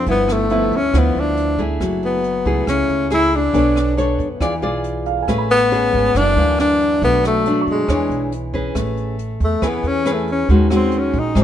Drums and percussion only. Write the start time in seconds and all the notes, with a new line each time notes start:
0.06 kick, closed hi-hat
0.28 cross-stick, closed hi-hat
0.50 closed hi-hat
0.72 closed hi-hat
0.94 kick, cross-stick, closed hi-hat
1.16 closed hi-hat
1.37 closed hi-hat
1.58 kick, closed hi-hat
1.80 kick, cross-stick, closed hi-hat
2.03 closed hi-hat
2.24 closed hi-hat
2.45 kick, closed hi-hat
2.67 kick, cross-stick, closed hi-hat
2.89 closed hi-hat
3.10 cross-stick, closed hi-hat
3.32 closed hi-hat
3.54 kick, closed hi-hat
3.76 cross-stick, closed hi-hat
3.98 closed hi-hat
4.19 kick, closed hi-hat
4.41 kick, cross-stick, closed hi-hat
4.62 closed hi-hat
4.84 closed hi-hat
5.06 closed hi-hat
5.28 kick, cross-stick, closed hi-hat
5.50 closed hi-hat
5.71 closed hi-hat
5.93 kick, closed hi-hat
6.15 kick, cross-stick, closed hi-hat
6.37 closed hi-hat
6.59 cross-stick, closed hi-hat
6.80 closed hi-hat
7.02 kick, closed hi-hat
7.24 cross-stick, closed hi-hat
7.46 closed hi-hat
7.67 closed hi-hat
7.88 kick, cross-stick, closed hi-hat
8.11 closed hi-hat
8.32 closed hi-hat
8.54 kick, closed hi-hat
8.75 kick, cross-stick, closed hi-hat
8.97 closed hi-hat
9.19 closed hi-hat
9.40 kick, closed hi-hat
9.62 kick, cross-stick, closed hi-hat
9.84 closed hi-hat
10.06 cross-stick, closed hi-hat
10.28 closed hi-hat
10.49 kick, closed hi-hat
10.70 cross-stick, closed hi-hat
10.91 closed hi-hat
11.14 kick, closed hi-hat
11.35 kick, cross-stick, closed hi-hat